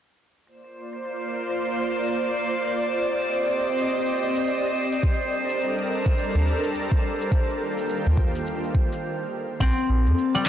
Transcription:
0.46 ambient pad A#3 F4 C5 D5, synth texture C5, shaker
0.64 shaker
0.93 shaker
1.04 shaker
1.22 shaker
1.50 shaker
1.61 shaker
1.79 shaker
2.07 shaker
2.19 shaker
2.36 shaker
2.64 shaker
2.75 ambient pad C4 G4 D#5, shaker
2.93 shaker
3.21 shaker
3.33 shaker
3.50 shaker
3.78 shaker
3.90 shaker
4.07 shaker
4.35 shaker
4.47 shaker
4.64 shaker
4.92 shaker
5.03 ambient pad G3 D4 A4 A#4, kick, shaker
5.21 shaker
5.49 shaker
5.61 shaker
5.78 shaker
6.06 kick, shaker
6.18 shaker
6.35 udu, shaker
6.64 shaker
6.75 shaker
6.92 kick, shaker
7.21 shaker
7.32 ambient pad D#3 A#3 F4 G4, kick, shaker
7.50 shaker
7.78 shaker
7.90 shaker
8.07 udu, shaker
8.17 kick
8.35 shaker
8.47 shaker
8.64 shaker
8.75 kick
8.93 shaker
9.60 sub bass A#1, ambient pad A#3 D4 A4, harp C4, kick, claves, shaker
9.78 shaker
9.89 sub bass A#1
10.06 sub bass F2, shaker
10.18 shaker
10.35 harp G3, claves, shaker

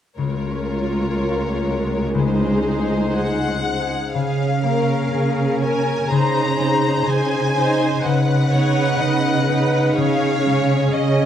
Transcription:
0.17 cello section C#2, harp C#3, viola section G#3 F4, violin section A#4 C#5
0.51 harp C#4
0.84 harp F4
1.17 harp A#4
1.49 harp C#5
1.82 harp A#4
2.14 harp C#3, viola section D#4, violin section G#4 C5
2.47 harp C4
2.80 harp D#4
3.13 harp G#4, violin section F#5
3.48 harp C5
3.81 harp G#4
4.13 cello section C#3, harp C#3, violin section G#4 F5
4.63 harp A#3, viola section C#4 A#4, violin section A#4
5.12 cello section C#3, harp G#4, violin section G#4
5.61 viola section C#4 A#4, harp C#4, violin section A#4 G#5
6.09 cello section C#3, harp C#3, viola section D#4 C5, violin section G#4 A#5
6.59 harp C4, viola section D#4 C5
7.07 cello section C#3, harp G#4, violin section G#4 G#5
7.56 viola section D#4 C5, harp D#4, violin section C5
8.04 cello section C#3, harp C#3, violin section B4 F#5
8.51 harp B3, viola section D#4 B4, violin section C#5
8.99 cello section C#3, harp B4, violin section D#5
9.48 viola section D#4 B4, harp D#4, violin section B4
9.95 cello section C#3, harp C#3, viola section C#4 G#4, violin section C#5 F5
10.45 harp G#3, viola section C#4 G#4
10.92 cello section C#3, harp C#5, violin section D#5

